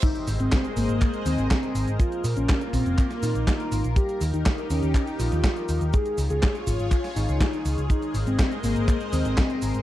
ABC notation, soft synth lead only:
X:1
M:4/4
L:1/16
Q:1/4=122
K:Ab
V:1 name="Soft synth lead"
E2 z C2 z B,3 z C4- C z | F2 z D2 z C3 z E4- E z | G2 z E2 z D3 z F4- F z | A2 z A2 z F3 z E4- E z |
E2 z C2 z B,3 z C4- C z |]